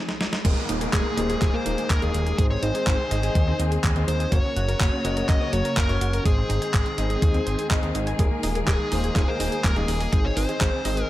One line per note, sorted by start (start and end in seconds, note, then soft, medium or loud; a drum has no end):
0.09 snare medium
0.21 snare medium
0.33 snare medium
0.45 0.54 D#1 loud
0.45 4.28 D#3 medium
0.45 4.28 G#3 medium
0.45 0.50 G#3 loud
0.45 2.37 A#3 medium
0.45 0.78 A#3 medium
0.45 0.78 D#4 medium
0.45 2.36 G#4 medium
0.45 0.78 G#4 medium
0.45 0.78 A#4 medium
0.45 kick loud
0.45 closed hi-hat medium
0.45 crash loud
0.45 downlifter medium
0.57 0.62 A#3 medium
0.69 0.88 D#1 medium
0.69 0.81 D#4 loud
0.69 closed hi-hat medium
0.81 1.00 A#3 medium
0.81 1.00 D#4 medium
0.81 0.93 G#4 medium
0.81 1.00 G#4 medium
0.81 1.00 A#4 medium
0.81 closed hi-hat medium
0.93 1.03 D#1 medium
0.93 1.01 G#3 medium
0.93 1.41 G#4 medium
0.93 kick loud
0.93 clap loud
0.93 closed hi-hat medium
1.05 1.10 A#3 medium
1.17 1.36 D#1 medium
1.17 1.51 A#3 medium
1.17 1.25 D#4 medium
1.17 1.51 D#4 medium
1.17 1.51 G#4 medium
1.17 1.51 C5 loud
1.17 closed hi-hat medium
1.29 1.38 G#4 medium
1.29 closed hi-hat medium
1.42 1.51 D#1 medium
1.42 1.46 G#3 loud
1.42 1.54 G#4 medium
1.42 kick loud
1.42 clap medium
1.42 closed hi-hat medium
1.54 1.58 A#3 medium
1.54 1.84 A#3 medium
1.54 1.84 D#4 medium
1.54 1.84 G#4 medium
1.54 1.84 A#4 loud
1.54 1.91 C5 loud
1.66 1.75 D#1 medium
1.66 1.71 D#4 loud
1.66 closed hi-hat medium
1.78 1.89 G#4 medium
1.78 closed hi-hat medium
1.90 1.99 D#1 medium
1.90 2.02 G#3 loud
1.90 2.02 A#4 loud
1.90 kick loud
1.90 clap loud
1.90 closed hi-hat medium
2.02 2.12 D#1 loud
2.02 2.07 A#3 medium
2.02 2.36 A#3 loud
2.02 2.36 D#4 medium
2.02 2.36 G#4 medium
2.02 2.37 G#4 loud
2.02 2.36 A#4 loud
2.02 closed hi-hat soft
2.14 2.33 D#1 medium
2.14 2.22 D#4 medium
2.14 closed hi-hat medium
2.26 2.34 G#4 loud
2.26 closed hi-hat medium
2.38 2.57 G#1 medium
2.38 2.43 G#3 loud
2.38 2.72 C4 medium
2.38 4.30 C4 medium
2.38 2.72 D#4 medium
2.38 2.72 G#4 medium
2.38 2.44 G#4 medium
2.38 4.30 G#4 loud
2.38 2.72 C5 medium
2.38 kick loud
2.38 closed hi-hat medium
2.51 2.55 C4 medium
2.51 2.63 C#5 loud
2.63 2.72 G#1 loud
2.63 2.74 D#4 loud
2.63 3.60 C5 loud
2.63 closed hi-hat medium
2.75 2.94 C4 medium
2.75 2.94 D#4 medium
2.75 2.86 G#4 medium
2.75 2.94 G#4 medium
2.75 2.94 C5 loud
2.75 closed hi-hat soft
2.87 2.96 G#1 medium
2.87 2.95 G#3 medium
2.87 kick loud
2.87 clap loud
2.87 closed hi-hat medium
2.99 3.04 C4 medium
3.11 3.30 G#1 medium
3.11 3.44 C4 medium
3.11 3.45 D#4 medium
3.11 3.19 D#4 medium
3.11 3.45 G#4 medium
3.11 3.45 D#5 loud
3.11 closed hi-hat medium
3.23 3.31 G#4 medium
3.23 closed hi-hat medium
3.35 3.54 D#2 loud
3.35 3.40 G#3 medium
3.35 kick loud
3.35 closed hi-hat medium
3.47 3.77 C4 medium
3.47 3.52 C4 medium
3.47 3.77 D#4 medium
3.47 3.77 G#4 medium
3.47 3.77 C5 loud
3.60 3.78 D#2 loud
3.60 3.64 D#4 loud
3.60 closed hi-hat medium
3.72 3.83 G#4 medium
3.72 closed hi-hat medium
3.84 3.93 D#2 medium
3.84 3.95 G#3 loud
3.84 kick loud
3.84 clap loud
3.84 closed hi-hat medium
3.96 4.05 D#2 loud
3.96 4.01 C4 medium
3.96 4.29 C4 loud
3.96 4.29 D#4 medium
3.96 4.29 G#4 medium
3.96 4.29 C5 loud
3.96 closed hi-hat soft
4.08 4.26 D#2 medium
4.08 4.16 D#4 medium
4.08 4.32 C5 medium
4.08 closed hi-hat medium
4.20 4.28 G#4 loud
4.20 closed hi-hat medium
4.32 4.41 F#1 loud
4.32 6.24 C#3 medium
4.32 6.24 F#3 medium
4.32 6.24 A#3 medium
4.32 4.37 A#3 loud
4.32 4.66 C#4 medium
4.32 6.23 F#4 medium
4.32 4.65 F#4 medium
4.32 4.65 A#4 medium
4.32 4.65 C#5 medium
4.32 5.28 C#5 loud
4.32 kick loud
4.32 closed hi-hat medium
4.44 4.49 C#4 medium
4.56 4.75 F#1 medium
4.56 4.68 F#4 loud
4.56 closed hi-hat medium
4.68 4.87 C#4 medium
4.68 4.87 F#4 medium
4.68 4.87 A#4 medium
4.68 4.80 A#4 medium
4.68 4.87 C#5 medium
4.68 closed hi-hat soft
4.80 4.90 F#1 medium
4.80 4.89 A#3 medium
4.80 kick loud
4.80 clap loud
4.80 closed hi-hat medium
4.93 4.97 C#4 medium
5.05 5.23 F#1 medium
5.05 5.38 C#4 medium
5.05 5.38 F#4 medium
5.05 5.13 F#4 medium
5.05 5.38 A#4 medium
5.05 5.38 D#5 loud
5.05 closed hi-hat medium
5.17 5.25 A#4 medium
5.17 closed hi-hat medium
5.29 5.38 F#1 medium
5.29 5.34 A#3 loud
5.29 5.51 D#5 loud
5.29 kick loud
5.29 clap medium
5.29 closed hi-hat medium
5.41 5.71 C#4 medium
5.41 5.46 C#4 medium
5.41 5.71 F#4 medium
5.41 5.71 A#4 medium
5.41 5.71 C#5 loud
5.53 5.62 F#1 medium
5.53 5.58 F#4 loud
5.53 5.76 C#5 loud
5.53 closed hi-hat medium
5.65 5.77 A#4 medium
5.65 closed hi-hat medium
5.77 5.87 F#1 medium
5.77 5.89 A#3 loud
5.77 6.22 A#4 loud
5.77 kick loud
5.77 clap loud
5.77 closed hi-hat medium
5.89 5.99 F#1 loud
5.89 6.23 C#4 medium
5.89 5.94 C#4 medium
5.89 6.23 F#4 medium
5.89 6.23 A#4 medium
5.89 6.23 C#5 loud
5.89 closed hi-hat soft
6.01 6.20 F#1 medium
6.01 6.09 F#4 medium
6.01 closed hi-hat medium
6.13 6.21 A#4 loud
6.13 closed hi-hat medium
6.25 6.44 G#1 medium
6.25 10.09 D#3 medium
6.25 11.10 G#3 medium
6.25 6.30 G#3 loud
6.25 8.17 C4 medium
6.25 6.59 C4 medium
6.25 6.59 D#4 medium
6.25 11.10 G#4 medium
6.25 6.59 G#4 medium
6.25 7.67 G#4 medium
6.25 6.59 C5 medium
6.25 kick loud
6.25 closed hi-hat medium
6.37 6.42 C4 medium
6.50 6.59 G#1 loud
6.50 6.61 D#4 loud
6.50 closed hi-hat medium
6.62 6.81 C4 medium
6.62 6.81 D#4 medium
6.62 6.73 G#4 medium
6.62 6.81 G#4 medium
6.62 6.81 C5 loud
6.62 closed hi-hat medium
6.74 6.83 G#1 medium
6.74 6.82 G#3 medium
6.74 kick loud
6.74 clap loud
6.74 closed hi-hat medium
6.86 6.91 C4 medium
6.86 closed hi-hat soft
6.98 7.17 G#1 medium
6.98 7.32 C4 medium
6.98 7.06 D#4 medium
6.98 7.32 D#4 medium
6.98 7.32 G#4 medium
6.98 7.32 D#5 loud
6.98 closed hi-hat medium
7.10 7.18 G#4 medium
7.10 closed hi-hat soft
7.22 7.41 D#2 loud
7.22 7.27 G#3 loud
7.22 kick loud
7.22 closed hi-hat medium
7.34 7.39 C4 medium
7.34 7.65 C4 medium
7.34 7.65 D#4 medium
7.34 7.65 G#4 medium
7.34 7.65 C5 loud
7.34 closed hi-hat soft
7.46 7.56 G#1 medium
7.46 7.51 C5 medium
7.46 closed hi-hat medium
7.59 7.70 G#4 medium
7.59 closed hi-hat soft
7.71 7.80 G#1 medium
7.71 7.75 G#3 loud
7.71 8.16 C4 medium
7.71 8.16 D#4 medium
7.71 8.16 G#4 medium
7.71 8.16 D#5 loud
7.71 kick loud
7.71 clap loud
7.71 closed hi-hat medium
7.83 7.92 D#2 medium
7.83 7.88 D#4 loud
7.83 closed hi-hat soft
7.95 8.14 G#1 loud
7.95 8.03 D#4 medium
7.95 closed hi-hat medium
8.07 8.15 G#5 loud
8.07 closed hi-hat soft
8.19 8.28 D#1 loud
8.19 8.24 G#3 loud
8.19 10.11 A#3 medium
8.19 8.53 A#3 medium
8.19 8.53 D#4 medium
8.19 8.53 G#4 medium
8.19 8.53 A#4 medium
8.19 kick loud
8.19 closed hi-hat medium
8.31 8.36 A#3 medium
8.43 8.62 D#1 medium
8.43 8.55 D#4 loud
8.43 open hi-hat loud
8.55 8.74 A#3 medium
8.55 8.74 D#4 medium
8.55 8.67 G#4 medium
8.55 8.74 G#4 medium
8.55 8.74 A#4 medium
8.55 closed hi-hat soft
8.67 8.77 D#1 medium
8.67 8.75 G#3 medium
8.67 9.15 G#4 medium
8.67 kick loud
8.67 clap loud
8.67 closed hi-hat medium
8.79 8.84 A#3 medium
8.92 9.10 D#1 medium
8.92 9.25 A#3 medium
8.92 9.00 D#4 medium
8.92 9.25 D#4 medium
8.92 9.25 G#4 medium
8.92 9.25 C5 loud
8.92 open hi-hat loud
9.04 9.12 G#4 medium
9.04 closed hi-hat medium
9.16 9.25 D#1 medium
9.16 9.21 G#3 loud
9.16 9.28 G#4 medium
9.16 kick loud
9.16 clap medium
9.16 closed hi-hat medium
9.28 9.58 A#3 medium
9.28 9.33 A#3 medium
9.28 9.58 D#4 medium
9.28 9.58 G#4 medium
9.28 9.58 A#4 loud
9.28 9.65 C5 loud
9.40 9.49 D#1 medium
9.40 9.45 D#4 loud
9.40 open hi-hat loud
9.52 9.64 G#4 medium
9.52 closed hi-hat medium
9.64 9.74 D#1 medium
9.64 9.76 G#3 loud
9.64 9.77 A#4 loud
9.64 kick loud
9.64 clap loud
9.64 closed hi-hat medium
9.76 9.86 D#1 loud
9.76 9.81 A#3 medium
9.76 10.10 A#3 loud
9.76 10.10 D#4 medium
9.76 10.10 G#4 medium
9.76 10.12 G#4 loud
9.76 10.10 A#4 loud
9.76 closed hi-hat soft
9.88 10.07 D#1 medium
9.88 9.96 D#4 medium
9.88 open hi-hat loud
10.00 10.09 G#4 loud
10.00 open hi-hat medium
10.12 10.31 G#1 medium
10.12 11.10 D#3 medium
10.12 10.17 G#3 loud
10.12 11.10 C4 medium
10.12 10.46 C4 medium
10.12 10.46 D#4 medium
10.12 10.46 G#4 medium
10.12 10.25 G#4 loud
10.12 10.46 C5 medium
10.12 kick loud
10.12 closed hi-hat medium
10.25 10.30 C4 medium
10.25 10.37 C#5 loud
10.37 10.46 G#1 loud
10.37 10.48 D#4 loud
10.37 11.02 C5 loud
10.37 open hi-hat loud
10.49 10.68 C4 medium
10.49 10.68 D#4 medium
10.49 10.68 G#4 medium
10.49 10.60 G#4 medium
10.49 10.68 C5 medium
10.49 closed hi-hat soft
10.61 10.70 G#1 medium
10.61 10.69 G#3 medium
10.61 kick loud
10.61 clap loud
10.61 closed hi-hat medium
10.73 10.78 C4 medium
10.85 11.04 G#1 medium
10.85 11.10 C4 loud
10.85 10.93 D#4 medium
10.85 11.10 D#4 medium
10.85 11.10 G#4 medium
10.85 11.10 D#5 loud
10.85 open hi-hat loud
10.97 11.05 G#4 medium
10.97 closed hi-hat medium
11.02 11.10 A#4 loud